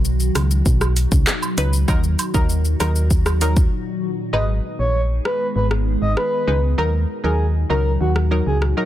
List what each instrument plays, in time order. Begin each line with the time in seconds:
Already playing: fm bass B1, ambient pad B2 D#3 F#3 D#4 F#4
0.05 shaker
0.20 shaker
0.35 fm bass C#2, cross-stick, closed hi-hat, cabasa, high woodblock, shaker
0.51 shaker
0.66 fm bass B1, kick, shaker
0.81 cross-stick, high woodblock, shaker
0.96 closed hi-hat, cabasa, shaker
1.12 fm bass C#2, kick, shaker
1.27 cross-stick, clap, shaker
1.42 high woodblock, shaker
1.57 fm bass C#2, synth stab F#3 D#4 B4, closed hi-hat, cabasa, shaker
1.73 shaker
1.88 fm bass D#2, ambient pad A#2 F#4, synth stab F#3 D#4 A#4, kick, high woodblock, shaker
2.04 shaker
2.19 closed hi-hat, cabasa, high woodblock, shaker
2.34 fm bass D#2, synth stab F#3 D#4 A#4, kick, shaker
2.50 shaker
2.65 shaker
2.80 fm bass D#2, synth stab F#3 D#4 A#4, cross-stick, closed hi-hat, cabasa, high woodblock, shaker
2.96 shaker
3.10 kick, shaker
3.26 cross-stick, high woodblock, shaker
3.41 synth stab F#3 D#4 A#4, closed hi-hat, cabasa, shaker
3.56 kick, shaker
4.33 fm bass G#1, ambient pad D#3 G#3 B3 D#4 G#4, synth stab G#3 D#4 B4, soft synth lead D#5
4.79 fm bass A#1, soft synth lead C#5
5.25 soft synth lead B4, cross-stick
5.56 fm bass G#1, soft synth lead B4
5.71 cross-stick
6.02 fm bass G#1, soft synth lead D#5
6.17 soft synth lead B4, cross-stick
6.47 fm bass C#2, synth stab G#3 D#4 B4
6.78 fm bass D#2, ambient pad A#2 F#3 D#4 F#4, synth stab F#3 D#4 A#4, soft synth lead A#4
7.24 fm bass D#2, synth stab F#3 D#4 A#4, soft synth lead G#4
7.70 fm bass C#2, synth stab F#3 D#4 A#4, soft synth lead A#4
8.01 fm bass D#2, soft synth lead F#4
8.16 cross-stick
8.31 synth stab F#3 D#4 A#4
8.46 fm bass C#2, soft synth lead G#4
8.62 cross-stick
8.77 synth stab F#3 D#4 A#4